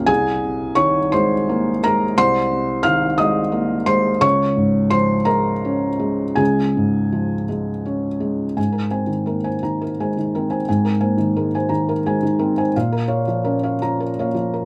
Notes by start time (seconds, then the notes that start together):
Already playing: A#1 F2 C#3 A#3 C#4 F4 G4 G#4 F5 G5 G#5
0.06 C2 G#4 G#5
0.44 C3
0.75 D#3 C#5 C#6
1.12 G#3 C5 C6
1.49 A#3
1.84 G#3 A#4 A#5
2.18 C2 C5 C6
2.51 C3
2.83 D#3 F5 F6
3.18 G#3 D#5 D#6
3.52 A#3
3.86 G#3 C5 C6
4.21 C#2 C#5 C#6
4.57 G#2
4.90 F3 C5 C6
5.25 G#3 A#4 A#5
5.65 C#4
5.99 G#3
6.35 C#2 G#4 G#5
6.77 G#2
7.12 F3
7.49 G#3
7.86 C#4
8.20 G#3
8.57 G#2 G#5
8.72 A#4
8.90 C4 C5 G#5
9.07 D#3
9.26 A#3 A#4
9.44 C5 G#5
9.63 D#3 A#5
9.82 A#4
10.00 G#3 C5 G#5
10.17 D#3
10.35 C4 A#4
10.50 C5 G#5
10.69 G#2 G#5
10.85 A#4
11.00 A#3 C5 G#5
11.18 D#3
11.36 G#3 A#4
11.55 C5 G#5
11.69 D#3 A#5
11.89 A#4
12.06 G#3 C5 G#5
12.23 D#3
12.39 C4 A#4
12.58 C5 G#5
12.76 A#2 F5
12.92 A#4
13.08 C#5 F5
13.27 F3
13.44 C#4 A#4
13.63 C#5 F5
13.82 F3 A#5
14.00 A#4
14.19 A#3 C#5 F5
14.34 F3
14.54 A#4